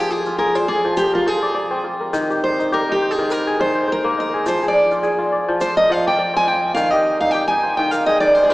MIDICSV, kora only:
0, 0, Header, 1, 2, 480
1, 0, Start_track
1, 0, Tempo, 579151
1, 1770, Time_signature, 4, 2, 24, 8
1, 7076, End_track
2, 0, Start_track
2, 0, Title_t, "Kora"
2, 0, Program_c, 0, 46
2, 0, Note_on_c, 0, 53, 82
2, 0, Note_on_c, 0, 58, 71
2, 0, Note_on_c, 0, 63, 47
2, 0, Note_on_c, 0, 65, 56
2, 0, Note_on_c, 0, 68, 60
2, 0, Note_on_c, 0, 70, 65
2, 217, Note_off_c, 0, 65, 0
2, 221, Note_on_c, 0, 65, 64
2, 318, Note_off_c, 0, 68, 0
2, 321, Note_on_c, 0, 68, 86
2, 415, Note_off_c, 0, 70, 0
2, 453, Note_off_c, 0, 65, 0
2, 456, Note_on_c, 0, 65, 63
2, 568, Note_on_c, 0, 74, 66
2, 617, Note_off_c, 0, 63, 0
2, 693, Note_off_c, 0, 53, 0
2, 703, Note_on_c, 0, 53, 75
2, 811, Note_on_c, 0, 72, 69
2, 938, Note_on_c, 0, 70, 70
2, 1037, Note_off_c, 0, 53, 0
2, 1047, Note_on_c, 0, 53, 76
2, 1092, Note_off_c, 0, 58, 0
2, 1176, Note_off_c, 0, 74, 0
2, 1179, Note_on_c, 0, 74, 68
2, 1277, Note_off_c, 0, 74, 0
2, 1280, Note_on_c, 0, 74, 71
2, 1416, Note_on_c, 0, 60, 81
2, 1452, Note_off_c, 0, 68, 0
2, 1521, Note_off_c, 0, 65, 0
2, 1524, Note_on_c, 0, 65, 49
2, 1659, Note_off_c, 0, 70, 0
2, 1662, Note_on_c, 0, 70, 64
2, 1766, Note_on_c, 0, 51, 95
2, 1795, Note_off_c, 0, 72, 0
2, 1812, Note_off_c, 0, 53, 0
2, 1816, Note_off_c, 0, 74, 0
2, 1908, Note_on_c, 0, 67, 60
2, 2149, Note_on_c, 0, 63, 62
2, 2253, Note_off_c, 0, 67, 0
2, 2256, Note_on_c, 0, 67, 87
2, 2391, Note_off_c, 0, 63, 0
2, 2395, Note_on_c, 0, 63, 69
2, 2502, Note_on_c, 0, 72, 62
2, 2630, Note_off_c, 0, 51, 0
2, 2640, Note_on_c, 0, 51, 75
2, 2717, Note_off_c, 0, 70, 0
2, 2740, Note_on_c, 0, 70, 70
2, 2779, Note_off_c, 0, 65, 0
2, 2877, Note_on_c, 0, 68, 74
2, 2908, Note_off_c, 0, 60, 0
2, 2926, Note_off_c, 0, 67, 0
2, 2969, Note_off_c, 0, 51, 0
2, 2979, Note_on_c, 0, 51, 67
2, 3107, Note_off_c, 0, 72, 0
2, 3110, Note_on_c, 0, 72, 62
2, 3211, Note_off_c, 0, 72, 0
2, 3214, Note_on_c, 0, 72, 73
2, 3352, Note_on_c, 0, 58, 84
2, 3460, Note_off_c, 0, 63, 0
2, 3463, Note_on_c, 0, 63, 59
2, 3591, Note_off_c, 0, 68, 0
2, 3595, Note_on_c, 0, 68, 67
2, 3696, Note_on_c, 0, 53, 85
2, 3735, Note_off_c, 0, 51, 0
2, 3795, Note_off_c, 0, 70, 0
2, 3832, Note_off_c, 0, 68, 0
2, 3835, Note_on_c, 0, 68, 58
2, 4073, Note_on_c, 0, 65, 64
2, 4166, Note_off_c, 0, 68, 0
2, 4169, Note_on_c, 0, 68, 81
2, 4199, Note_off_c, 0, 72, 0
2, 4294, Note_off_c, 0, 65, 0
2, 4297, Note_on_c, 0, 65, 64
2, 4410, Note_on_c, 0, 74, 60
2, 4459, Note_off_c, 0, 63, 0
2, 4535, Note_off_c, 0, 53, 0
2, 4545, Note_on_c, 0, 53, 85
2, 4649, Note_on_c, 0, 72, 66
2, 4782, Note_on_c, 0, 70, 67
2, 4878, Note_off_c, 0, 53, 0
2, 4888, Note_on_c, 0, 53, 80
2, 4951, Note_off_c, 0, 58, 0
2, 5024, Note_off_c, 0, 74, 0
2, 5028, Note_on_c, 0, 74, 66
2, 5124, Note_off_c, 0, 74, 0
2, 5127, Note_on_c, 0, 74, 80
2, 5251, Note_on_c, 0, 60, 74
2, 5300, Note_off_c, 0, 68, 0
2, 5362, Note_off_c, 0, 65, 0
2, 5365, Note_on_c, 0, 65, 57
2, 5603, Note_on_c, 0, 51, 88
2, 5633, Note_off_c, 0, 72, 0
2, 5650, Note_off_c, 0, 53, 0
2, 5653, Note_off_c, 0, 74, 0
2, 5743, Note_on_c, 0, 67, 61
2, 5837, Note_off_c, 0, 70, 0
2, 5980, Note_on_c, 0, 63, 60
2, 6081, Note_off_c, 0, 67, 0
2, 6085, Note_on_c, 0, 67, 72
2, 6215, Note_off_c, 0, 63, 0
2, 6218, Note_on_c, 0, 63, 65
2, 6325, Note_on_c, 0, 72, 64
2, 6445, Note_off_c, 0, 51, 0
2, 6455, Note_on_c, 0, 51, 79
2, 6565, Note_on_c, 0, 70, 73
2, 6620, Note_off_c, 0, 65, 0
2, 6696, Note_on_c, 0, 68, 63
2, 6743, Note_off_c, 0, 60, 0
2, 6746, Note_off_c, 0, 67, 0
2, 6794, Note_off_c, 0, 51, 0
2, 6803, Note_on_c, 0, 51, 74
2, 6931, Note_off_c, 0, 72, 0
2, 6934, Note_on_c, 0, 72, 62
2, 7035, Note_off_c, 0, 72, 0
2, 7038, Note_on_c, 0, 72, 72
2, 7076, Note_off_c, 0, 51, 0
2, 7076, Note_off_c, 0, 63, 0
2, 7076, Note_off_c, 0, 68, 0
2, 7076, Note_off_c, 0, 70, 0
2, 7076, Note_off_c, 0, 72, 0
2, 7076, End_track
0, 0, End_of_file